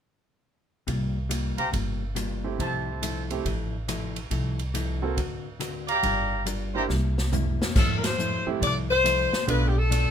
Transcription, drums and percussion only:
0.88 kick, ride
1.31 hi-hat pedal, ride
1.58 ride
1.73 kick, ride
2.16 cross-stick, hi-hat pedal, ride
2.60 kick, ride
3.03 hi-hat pedal, ride
3.30 ride
3.46 kick, ride
3.89 cross-stick, hi-hat pedal, ride
4.16 ride
4.31 kick, ride
4.59 ride
4.75 hi-hat pedal, ride
5.17 kick, ride
5.61 cross-stick, hi-hat pedal, ride
5.88 ride
6.03 kick, ride
6.46 hi-hat pedal, ride
6.89 snare
7.18 snare
7.33 floor tom, hi-hat pedal
7.62 snare
7.76 kick, snare, crash
8.04 snare, ride
8.19 hi-hat pedal
8.62 kick, ride
9.06 cross-stick, hi-hat pedal, ride
9.33 snare
9.48 kick, ride
9.92 hi-hat pedal, ride

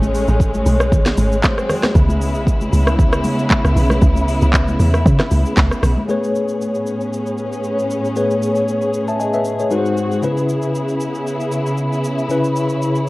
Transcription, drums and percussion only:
0.02 high conga, shaker
0.15 open hi-hat, shaker
0.28 shaker
0.40 kick, shaker
0.54 high conga, shaker
0.66 open hi-hat, high conga, shaker
0.80 cross-stick, shaker
0.92 kick, low conga, shaker
1.06 snare, shaker
1.17 open hi-hat, high conga, shaker
1.32 shaker
1.43 kick, snare, clap, high conga, shaker
1.58 cross-stick, shaker
1.69 cross-stick, open hi-hat, low conga, shaker
1.83 cross-stick, snare, high conga, shaker
1.95 kick, low conga, shaker
2.09 high conga, shaker
2.21 open hi-hat, shaker
2.35 shaker
2.47 kick, shaker
2.61 high conga, shaker
2.72 open hi-hat, high conga, shaker
2.87 cross-stick, shaker
2.99 kick, low conga, shaker
3.13 cross-stick, shaker
3.24 open hi-hat, high conga, shaker
3.39 shaker
3.50 kick, clap, high conga, shaker
3.65 cross-stick, shaker
3.76 open hi-hat, low conga, shaker
3.90 cross-stick, high conga, shaker
4.02 kick, low conga, shaker
4.15 high conga, shaker
4.28 open hi-hat, shaker
4.41 shaker
4.53 kick, clap, shaker
4.68 high conga, shaker
4.79 open hi-hat, high conga, shaker
4.94 cross-stick, shaker
5.06 kick, low conga, shaker
5.20 cross-stick, snare, shaker
5.31 open hi-hat, high conga, shaker
5.46 shaker
5.57 kick, snare, clap, high conga, shaker
5.71 cross-stick, shaker
5.83 cross-stick, open hi-hat, low conga, shaker
5.97 high conga
6.09 shaker
6.24 shaker
6.35 shaker
6.48 shaker
6.61 shaker
6.75 shaker
6.87 shaker
7.01 shaker
7.13 shaker
7.26 shaker
7.38 shaker
7.53 shaker
7.64 shaker
7.79 shaker
7.90 shaker
8.05 shaker
8.16 shaker
8.30 shaker
8.42 shaker
8.55 shaker
8.68 shaker
8.82 shaker
8.94 shaker
9.08 shaker
9.20 shaker
9.33 shaker
9.45 shaker
9.60 shaker
9.71 shaker
9.86 shaker
9.97 shaker
10.12 shaker
10.23 shaker
10.37 shaker
10.49 shaker
10.62 shaker
10.75 shaker
10.89 shaker
11.01 shaker
11.15 shaker
11.27 shaker
11.40 shaker
11.52 shaker
11.66 shaker
11.78 shaker
11.93 shaker
12.04 shaker
12.18 shaker
12.30 shaker
12.44 shaker
12.56 shaker
12.69 shaker
12.82 shaker
12.95 shaker

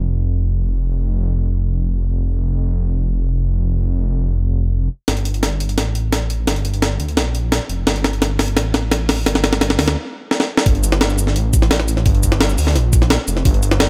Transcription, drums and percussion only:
5.08 snare, closed hi-hat
5.17 closed hi-hat
5.25 closed hi-hat
5.34 closed hi-hat
5.43 snare, closed hi-hat
5.60 closed hi-hat
5.69 closed hi-hat
5.78 snare, closed hi-hat
5.95 closed hi-hat
6.12 snare, closed hi-hat
6.30 closed hi-hat
6.47 snare, closed hi-hat
6.56 closed hi-hat
6.65 closed hi-hat
6.74 closed hi-hat
6.82 snare, closed hi-hat
7.00 closed hi-hat
7.08 closed hi-hat
7.17 snare, closed hi-hat
7.35 closed hi-hat
7.52 snare, closed hi-hat
7.69 closed hi-hat
7.87 snare, closed hi-hat
7.96 closed hi-hat
8.04 snare, closed hi-hat
8.13 closed hi-hat
8.22 snare, closed hi-hat
8.39 snare, open hi-hat
8.48 closed hi-hat
8.57 snare, closed hi-hat
8.74 snare, closed hi-hat
8.92 snare, closed hi-hat
9.09 snare, open hi-hat
9.26 snare, closed hi-hat
9.35 snare, closed hi-hat
9.44 snare, closed hi-hat
9.53 snare, closed hi-hat
9.61 snare, closed hi-hat
9.70 snare
9.79 snare, open hi-hat
9.88 snare, closed hi-hat
10.31 snare
10.40 snare
10.57 snare
10.66 kick, closed hi-hat
10.75 closed hi-hat
10.83 closed hi-hat, shaker
10.92 snare
11.01 snare, closed hi-hat
11.10 shaker
11.18 closed hi-hat, shaker
11.27 snare
11.36 closed hi-hat
11.53 kick, closed hi-hat, shaker
11.62 snare
11.71 snare, closed hi-hat
11.80 snare
11.88 closed hi-hat, shaker
11.97 snare
12.06 kick, closed hi-hat
12.15 closed hi-hat
12.23 kick, closed hi-hat, shaker
12.32 snare
12.41 snare, closed hi-hat
12.49 shaker
12.58 open hi-hat, shaker
12.67 snare
12.76 snare, closed hi-hat
12.93 kick, closed hi-hat, shaker
13.02 snare
13.10 snare, closed hi-hat
13.28 closed hi-hat, shaker
13.37 snare
13.45 kick, closed hi-hat
13.54 closed hi-hat
13.63 closed hi-hat, shaker
13.71 snare
13.80 snare, closed hi-hat

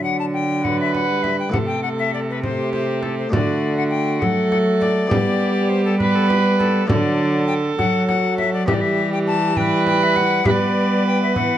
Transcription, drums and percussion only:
0.65 frame drum
0.95 frame drum
1.24 frame drum
1.54 frame drum
2.43 frame drum
2.73 frame drum
3.03 frame drum
3.33 frame drum
4.22 frame drum
4.52 frame drum
4.82 frame drum
5.11 frame drum
6.00 frame drum
6.30 frame drum
6.60 frame drum
6.89 frame drum
7.79 frame drum
8.09 frame drum
8.38 frame drum
8.68 frame drum
9.57 frame drum
9.87 frame drum
10.16 frame drum
10.45 frame drum
11.36 frame drum

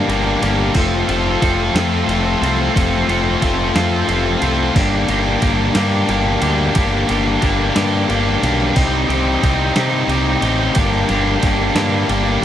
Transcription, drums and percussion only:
0.10 ride
0.43 ride
0.75 kick, crash
1.09 ride
1.42 kick, ride
1.76 snare, ride
2.09 ride
2.44 ride
2.76 kick, ride
3.09 ride
3.42 kick, ride
3.76 snare, ride
4.09 ride
4.42 ride
4.76 kick, crash
5.08 ride
5.42 kick, ride
5.75 snare, ride
6.09 ride
6.42 ride
6.75 kick, ride
7.09 ride
7.42 kick, ride
7.76 snare, ride
8.10 ride
8.43 ride
8.76 kick, crash
9.10 ride
9.43 kick, ride
9.76 snare, ride
10.09 ride
10.42 ride
10.75 kick, ride
11.09 ride
11.43 kick, ride
11.76 snare, ride
12.09 ride

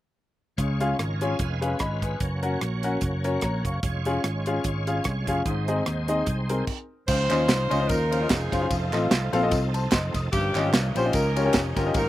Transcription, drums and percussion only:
0.58 kick, closed hi-hat
0.81 closed hi-hat
0.99 cross-stick, closed hi-hat
1.21 closed hi-hat
1.39 kick, cross-stick, closed hi-hat
1.62 closed hi-hat
1.79 kick, cross-stick, closed hi-hat
2.02 kick, cross-stick, closed hi-hat
2.20 kick, closed hi-hat
2.43 closed hi-hat
2.61 cross-stick, closed hi-hat
2.83 closed hi-hat
3.01 kick, cross-stick, closed hi-hat
3.24 closed hi-hat
3.41 kick, cross-stick, closed hi-hat
3.65 kick, closed hi-hat
3.83 kick, closed hi-hat
4.05 closed hi-hat
4.24 cross-stick, closed hi-hat
4.46 closed hi-hat
4.64 kick, cross-stick, closed hi-hat
4.87 closed hi-hat
5.04 kick, cross-stick, closed hi-hat
5.27 kick, closed hi-hat
5.46 kick, closed hi-hat
5.68 closed hi-hat
5.86 cross-stick, closed hi-hat
6.08 closed hi-hat
6.26 kick, cross-stick, closed hi-hat
6.49 closed hi-hat
6.67 kick, crash
7.08 kick, crash, tambourine
7.30 clap, ride, tambourine
7.49 snare, clap, ride, tambourine
7.71 ride, tambourine
7.89 kick, ride, tambourine
8.12 ride, tambourine
8.29 kick, snare, clap, ride, tambourine
8.52 kick, snare, ride, tambourine
8.71 kick, ride, tambourine
8.93 clap, ride, tambourine
9.11 snare, clap, ride, tambourine
9.33 ride, tambourine
9.51 kick, snare, ride, tambourine
9.74 ride, tambourine
9.91 kick, snare, clap, ride, tambourine
10.14 kick, snare, ride, tambourine
10.33 kick, ride, tambourine
10.55 clap, ride, tambourine
10.73 snare, clap, ride, tambourine
10.96 ride, tambourine
11.13 kick, snare, ride, tambourine
11.36 ride, tambourine
11.53 kick, snare, clap, ride, tambourine
11.77 kick, snare, ride, tambourine
11.94 kick, ride, tambourine

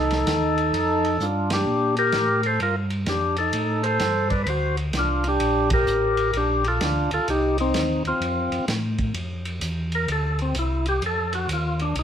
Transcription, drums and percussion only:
0.11 snare, ride
0.27 snare, hi-hat pedal, ride
0.58 ride
0.74 ride
1.05 ride
1.20 hi-hat pedal
1.50 snare, ride
1.97 ride
2.12 snare, hi-hat pedal, ride
2.43 ride
2.60 ride
2.90 ride
3.06 snare, hi-hat pedal, ride
3.36 ride
3.53 ride
3.84 ride
4.00 snare, hi-hat pedal, ride
4.30 kick, ride
4.46 ride
4.77 ride
4.93 snare, hi-hat pedal, ride
5.24 ride
5.40 ride
5.70 kick, ride
5.87 hi-hat pedal
6.17 ride
6.33 ride
6.64 ride
6.81 snare, hi-hat pedal, ride
7.11 ride
7.28 ride
7.58 ride
7.74 snare, hi-hat pedal, ride
8.05 ride
8.22 ride
8.52 ride
8.68 snare, hi-hat pedal, ride
8.98 kick, ride
9.14 ride
9.45 ride
9.61 hi-hat pedal, ride
9.92 ride
10.08 ride
10.39 ride
10.55 hi-hat pedal, ride
10.86 ride
11.02 ride
11.33 ride
11.49 hi-hat pedal, ride
11.79 ride
11.95 ride

